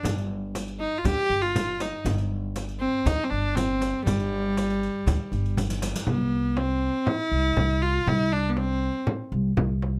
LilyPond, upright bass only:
\new Staff \with { instrumentName = "Upright bass" } { \clef bass \time 4/4 \tempo 4 = 120 g,,2 d,16 r16 g,,4. | g,,2 d,16 r16 g,,4. | g,,2 d,16 r16 g,,4. | c,2 r8 c,8 c,4 |
c,2 r8 c,8 c,4 | }